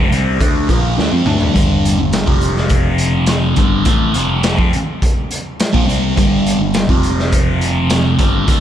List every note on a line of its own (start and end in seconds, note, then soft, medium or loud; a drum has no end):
0.00 0.10 F1 medium
0.00 0.12 F2 medium
0.00 0.10 C3 medium
0.11 0.38 C2 medium
0.11 0.40 C3 medium
0.11 0.40 G3 medium
0.11 0.40 C4 medium
0.11 closed hi-hat medium
0.40 0.67 D2 medium
0.40 0.69 D3 medium
0.40 0.69 A3 medium
0.40 0.69 D4 medium
0.40 kick loud
0.40 closed hi-hat medium
0.69 0.96 A#1 medium
0.69 0.96 A#2 medium
0.69 0.97 F3 medium
0.69 0.98 A#3 loud
0.69 kick medium
0.69 closed hi-hat medium
0.97 1.12 D2 medium
0.97 1.11 D3 medium
0.97 1.12 A3 loud
0.97 snare medium
1.11 1.25 F2 medium
1.11 1.26 F3 medium
1.11 1.26 C4 loud
1.26 1.53 D2 medium
1.26 1.53 D3 medium
1.26 1.54 A3 medium
1.26 1.55 D4 medium
1.26 mid tom medium
1.41 floor tom medium
1.53 1.96 G1 medium
1.53 1.97 G2 medium
1.53 1.98 D3 medium
1.53 1.98 G3 medium
1.53 kick loud
1.53 closed hi-hat medium
1.85 closed hi-hat medium
1.99 2.26 G1 medium
1.99 2.22 G2 medium
1.99 2.22 D3 medium
2.13 snare loud
2.13 closed hi-hat medium
2.26 3.54 F1 medium
2.26 3.56 F2 medium
2.26 3.56 C3 medium
2.26 3.57 F3 medium
2.26 kick loud
2.41 closed hi-hat medium
2.56 snare soft
2.69 kick loud
2.69 closed hi-hat medium
2.98 closed hi-hat medium
3.27 snare loud
3.27 closed hi-hat medium
3.56 3.85 G1 medium
3.56 3.85 G2 medium
3.56 3.84 D3 medium
3.56 3.85 G3 loud
3.56 kick loud
3.56 closed hi-hat medium
3.85 4.13 A1 medium
3.85 4.14 A2 medium
3.85 4.14 E3 loud
3.85 4.14 A3 loud
3.85 kick loud
3.85 closed hi-hat loud
4.13 4.56 F1 medium
4.13 4.57 F2 medium
4.13 4.56 C3 medium
4.13 4.55 F3 medium
4.13 closed hi-hat medium
4.43 snare loud
4.43 closed hi-hat medium
4.57 4.72 F2 medium
4.57 4.71 F3 medium
4.57 4.72 C4 medium
4.57 kick loud
4.73 closed hi-hat medium
5.02 kick loud
5.02 closed hi-hat medium
5.31 closed hi-hat medium
5.60 snare loud
5.60 closed hi-hat medium
5.73 5.86 A#1 medium
5.73 5.86 A#2 medium
5.73 5.88 F3 loud
5.73 kick loud
5.87 6.15 C2 medium
5.87 6.16 C3 medium
5.87 6.16 G3 medium
5.87 6.16 C4 medium
5.87 closed hi-hat medium
6.16 6.58 G1 medium
6.16 6.59 G2 medium
6.16 6.60 D3 medium
6.16 6.60 G3 medium
6.16 kick loud
6.16 closed hi-hat medium
6.46 closed hi-hat medium
6.59 6.87 G1 medium
6.59 6.84 G2 medium
6.59 6.84 D3 medium
6.74 snare loud
6.74 closed hi-hat medium
6.89 8.15 F1 medium
6.89 8.18 F2 medium
6.89 8.18 C3 medium
6.89 8.19 F3 medium
6.89 kick loud
7.03 closed hi-hat medium
7.19 snare soft
7.33 kick loud
7.33 closed hi-hat medium
7.61 closed hi-hat medium
7.90 snare loud
7.90 closed hi-hat medium
8.19 8.46 G1 medium
8.19 8.47 G2 medium
8.19 8.46 D3 medium
8.19 8.48 G3 medium
8.19 kick loud
8.19 closed hi-hat medium
8.47 8.60 D2 medium
8.47 8.60 D3 medium
8.47 8.60 A3 medium
8.47 8.60 D4 loud
8.47 kick loud
8.47 closed hi-hat medium